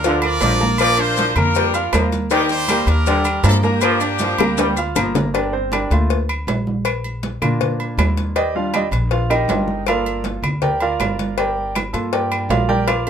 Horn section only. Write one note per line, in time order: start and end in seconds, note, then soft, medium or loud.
0.00 0.56 D4 medium
0.00 0.22 F4 medium
0.00 0.20 A#4 loud
0.23 0.76 F4 medium
0.23 0.76 A#4 medium
0.23 0.77 D5 loud
0.79 0.98 F4 medium
0.79 1.37 A#4 medium
0.79 0.98 D5 loud
0.99 1.35 F4 medium
0.99 1.37 C5 loud
1.36 2.08 D4 medium
1.36 2.08 F4 medium
1.36 1.90 A#4 loud
2.32 3.04 A#3 medium
2.32 2.87 D4 medium
2.32 2.50 G4 loud
2.51 2.88 G4 medium
2.51 2.86 C5 loud
2.89 3.60 D4 medium
2.89 3.60 G4 medium
2.89 3.46 A#4 loud
3.47 3.55 A4 loud
3.63 4.92 A#3 medium
3.63 4.92 D4 medium
3.63 4.93 G4 loud